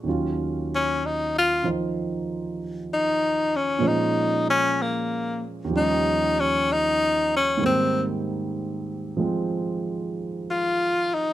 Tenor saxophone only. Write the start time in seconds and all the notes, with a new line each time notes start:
0.75 C#4
1.06 D#4
1.38 F4
2.94 D#4
3.56 C#4
3.87 D#4
4.50 C#4
4.82 A#3
5.77 D#4
6.40 C#4
6.72 D#4
7.36 C#4
7.66 C4
10.51 F4
11.14 D#4